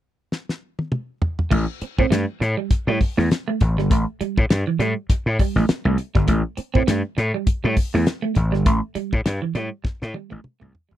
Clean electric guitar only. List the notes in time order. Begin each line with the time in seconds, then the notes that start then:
1.51 A3
1.82 muted clean electric guitar stroke
1.98 C4
2.10 A3
2.40 muted clean electric guitar stroke
2.57 G3
2.88 G3
3.01 muted clean electric guitar stroke
3.17 A3
3.48 A3
3.61 muted clean electric guitar stroke
3.78 G3
3.91 A3
4.21 G3
4.38 muted clean electric guitar stroke
4.51 muted clean electric guitar stroke
4.67 E3
4.80 G3
5.11 muted clean electric guitar stroke
5.40 G3
5.57 A3
5.85 A3
5.98 muted clean electric guitar stroke
6.15 G3
6.28 A3
6.57 muted clean electric guitar stroke
6.74 C4
6.87 A3
7.17 muted clean electric guitar stroke
7.34 G3
7.64 G3
7.77 muted clean electric guitar stroke
7.94 A3
8.22 A3
8.35 muted clean electric guitar stroke
8.52 G3
8.66 A3
8.95 G3
9.13 muted clean electric guitar stroke
9.26 muted clean electric guitar stroke
9.42 E3
9.55 G3
9.84 muted clean electric guitar stroke
10.14 G3
10.30 A3
10.60 A3
10.73 muted clean electric guitar stroke
10.89 G3